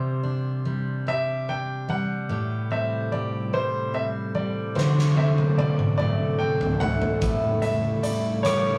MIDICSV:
0, 0, Header, 1, 5, 480
1, 0, Start_track
1, 0, Tempo, 819672
1, 1349, Time_signature, 6, 3, 24, 8
1, 5143, End_track
2, 0, Start_track
2, 0, Title_t, "Grand piano"
2, 0, Program_c, 0, 0
2, 0, Note_on_c, 0, 72, 60
2, 633, Note_on_c, 0, 76, 87
2, 873, Note_on_c, 0, 79, 77
2, 878, Note_off_c, 0, 76, 0
2, 1080, Note_off_c, 0, 72, 0
2, 1111, Note_on_c, 0, 78, 79
2, 1118, Note_off_c, 0, 79, 0
2, 1591, Note_on_c, 0, 76, 73
2, 1604, Note_off_c, 0, 78, 0
2, 1827, Note_on_c, 0, 74, 60
2, 1837, Note_off_c, 0, 76, 0
2, 2071, Note_on_c, 0, 72, 78
2, 2075, Note_off_c, 0, 74, 0
2, 2293, Note_off_c, 0, 72, 0
2, 2310, Note_on_c, 0, 76, 71
2, 2364, Note_off_c, 0, 76, 0
2, 2547, Note_on_c, 0, 74, 65
2, 2787, Note_on_c, 0, 72, 62
2, 2796, Note_off_c, 0, 74, 0
2, 3029, Note_on_c, 0, 76, 67
2, 3035, Note_off_c, 0, 72, 0
2, 3083, Note_off_c, 0, 76, 0
2, 3268, Note_on_c, 0, 74, 67
2, 3491, Note_off_c, 0, 74, 0
2, 3500, Note_on_c, 0, 74, 81
2, 3740, Note_on_c, 0, 79, 74
2, 3752, Note_off_c, 0, 74, 0
2, 3967, Note_off_c, 0, 79, 0
2, 3983, Note_on_c, 0, 78, 94
2, 4462, Note_on_c, 0, 76, 65
2, 4480, Note_off_c, 0, 78, 0
2, 4703, Note_on_c, 0, 74, 62
2, 4712, Note_off_c, 0, 76, 0
2, 4937, Note_on_c, 0, 73, 88
2, 4953, Note_off_c, 0, 74, 0
2, 5143, Note_off_c, 0, 73, 0
2, 5143, End_track
3, 0, Start_track
3, 0, Title_t, "Steel-string acoustic guitar"
3, 0, Program_c, 1, 25
3, 0, Note_on_c, 1, 48, 62
3, 0, Note_on_c, 1, 55, 40
3, 0, Note_on_c, 1, 62, 44
3, 0, Note_on_c, 1, 67, 42
3, 130, Note_off_c, 1, 62, 0
3, 137, Note_on_c, 1, 62, 46
3, 380, Note_off_c, 1, 55, 0
3, 382, Note_on_c, 1, 55, 44
3, 622, Note_off_c, 1, 67, 0
3, 624, Note_on_c, 1, 67, 40
3, 863, Note_off_c, 1, 62, 0
3, 870, Note_on_c, 1, 62, 44
3, 1102, Note_off_c, 1, 55, 0
3, 1104, Note_on_c, 1, 55, 46
3, 1340, Note_off_c, 1, 48, 0
3, 1343, Note_on_c, 1, 45, 60
3, 1346, Note_off_c, 1, 67, 0
3, 1349, Note_on_c, 1, 67, 47
3, 1398, Note_off_c, 1, 62, 0
3, 1584, Note_on_c, 1, 60, 43
3, 1821, Note_off_c, 1, 67, 0
3, 1828, Note_on_c, 1, 67, 50
3, 2065, Note_off_c, 1, 55, 0
3, 2067, Note_on_c, 1, 55, 43
3, 2304, Note_off_c, 1, 60, 0
3, 2306, Note_on_c, 1, 60, 46
3, 2538, Note_off_c, 1, 55, 0
3, 2545, Note_on_c, 1, 55, 42
3, 2783, Note_on_c, 1, 50, 62
3, 2786, Note_off_c, 1, 67, 0
3, 2787, Note_off_c, 1, 45, 0
3, 2788, Note_on_c, 1, 66, 47
3, 2835, Note_off_c, 1, 55, 0
3, 3022, Note_off_c, 1, 60, 0
3, 3024, Note_on_c, 1, 60, 49
3, 3268, Note_off_c, 1, 66, 0
3, 3509, Note_on_c, 1, 57, 45
3, 3742, Note_off_c, 1, 60, 0
3, 3749, Note_on_c, 1, 60, 44
3, 3985, Note_off_c, 1, 57, 0
3, 3987, Note_on_c, 1, 57, 45
3, 4224, Note_on_c, 1, 45, 63
3, 4226, Note_off_c, 1, 50, 0
3, 4227, Note_on_c, 1, 64, 53
3, 4277, Note_off_c, 1, 60, 0
3, 4696, Note_off_c, 1, 64, 0
3, 4703, Note_on_c, 1, 64, 53
3, 4943, Note_off_c, 1, 57, 0
3, 4946, Note_on_c, 1, 55, 47
3, 5143, Note_off_c, 1, 45, 0
3, 5143, Note_off_c, 1, 55, 0
3, 5143, Note_off_c, 1, 64, 0
3, 5143, End_track
4, 0, Start_track
4, 0, Title_t, "Analog synth pad"
4, 0, Program_c, 2, 89
4, 1347, Note_on_c, 2, 55, 65
4, 1349, Note_on_c, 2, 64, 64
4, 1352, Note_on_c, 2, 48, 77
4, 1353, Note_on_c, 2, 69, 83
4, 2774, Note_off_c, 2, 55, 0
4, 2775, Note_off_c, 2, 64, 0
4, 2777, Note_off_c, 2, 48, 0
4, 2795, Note_on_c, 2, 48, 79
4, 2796, Note_on_c, 2, 62, 68
4, 2799, Note_on_c, 2, 54, 69
4, 4217, Note_off_c, 2, 48, 0
4, 4218, Note_off_c, 2, 62, 0
4, 4219, Note_off_c, 2, 54, 0
4, 4233, Note_on_c, 2, 49, 70
4, 4233, Note_on_c, 2, 64, 74
4, 4236, Note_on_c, 2, 55, 66
4, 5143, Note_off_c, 2, 49, 0
4, 5143, Note_off_c, 2, 55, 0
4, 5143, Note_off_c, 2, 64, 0
4, 5143, Note_off_c, 2, 69, 0
4, 5143, End_track
5, 0, Start_track
5, 0, Title_t, "Drums"
5, 2799, Note_on_c, 9, 38, 38
5, 2857, Note_off_c, 9, 38, 0
5, 2921, Note_on_c, 9, 38, 39
5, 2980, Note_off_c, 9, 38, 0
5, 3152, Note_on_c, 9, 48, 44
5, 3211, Note_off_c, 9, 48, 0
5, 3272, Note_on_c, 9, 48, 61
5, 3331, Note_off_c, 9, 48, 0
5, 3391, Note_on_c, 9, 47, 51
5, 3449, Note_off_c, 9, 47, 0
5, 3511, Note_on_c, 9, 47, 58
5, 3569, Note_off_c, 9, 47, 0
5, 3871, Note_on_c, 9, 43, 62
5, 3929, Note_off_c, 9, 43, 0
5, 3989, Note_on_c, 9, 43, 81
5, 4048, Note_off_c, 9, 43, 0
5, 4108, Note_on_c, 9, 43, 67
5, 4167, Note_off_c, 9, 43, 0
5, 4227, Note_on_c, 9, 36, 76
5, 4229, Note_on_c, 9, 42, 62
5, 4286, Note_off_c, 9, 36, 0
5, 4287, Note_off_c, 9, 42, 0
5, 4464, Note_on_c, 9, 42, 38
5, 4522, Note_off_c, 9, 42, 0
5, 4706, Note_on_c, 9, 42, 64
5, 4764, Note_off_c, 9, 42, 0
5, 4947, Note_on_c, 9, 42, 74
5, 4954, Note_on_c, 9, 37, 94
5, 5006, Note_off_c, 9, 42, 0
5, 5013, Note_off_c, 9, 37, 0
5, 5143, End_track
0, 0, End_of_file